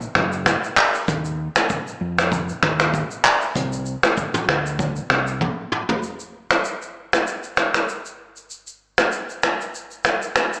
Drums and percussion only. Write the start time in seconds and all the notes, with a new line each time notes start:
0.01 shaker
0.15 finger snap, kick, cross-stick
0.32 shaker
0.46 finger snap, kick, cross-stick, shaker
0.64 shaker
0.77 clap, open hi-hat
0.94 shaker
1.08 kick, hi-hat pedal, shaker
1.25 shaker
1.56 finger snap, cross-stick, shaker
1.70 kick, shaker
1.87 shaker
2.19 finger snap, cross-stick, shaker
2.32 kick, shaker
2.49 shaker
2.63 finger snap, kick, cross-stick, mid tom
2.80 finger snap, cross-stick, shaker
2.94 kick, shaker
3.11 shaker
3.25 clap
3.42 shaker
3.56 kick, hi-hat pedal, shaker
3.72 shaker
3.86 shaker
4.03 finger snap, cross-stick, shaker
4.17 kick, shaker
4.34 mid tom, shaker
4.49 finger snap, cross-stick
4.66 shaker
4.79 kick, shaker
4.96 shaker
5.10 finger snap, cross-stick
5.27 shaker
5.41 kick, high tom
5.72 mid tom
5.89 floor tom
6.03 shaker
6.20 shaker
6.51 finger snap, cross-stick, shaker
6.64 shaker
6.82 shaker
7.13 finger snap, cross-stick, shaker
7.27 shaker
7.43 shaker
7.57 finger snap, cross-stick, shaker
7.74 finger snap, cross-stick, shaker
7.89 shaker
8.06 shaker
8.36 shaker
8.50 shaker
8.67 shaker
8.98 finger snap, cross-stick, shaker
9.12 shaker
9.29 shaker
9.43 finger snap, cross-stick, shaker
9.61 shaker
9.75 shaker
9.91 shaker
10.04 finger snap, cross-stick, shaker
10.22 shaker
10.36 finger snap, cross-stick, shaker
10.53 shaker